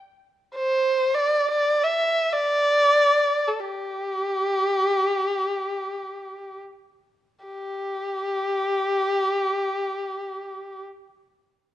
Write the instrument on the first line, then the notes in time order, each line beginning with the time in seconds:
erhu
0.56 C5
1.15 D5
1.51 D5
1.84 E5
2.33 D5
3.48 A4
3.60 G4
7.46 G4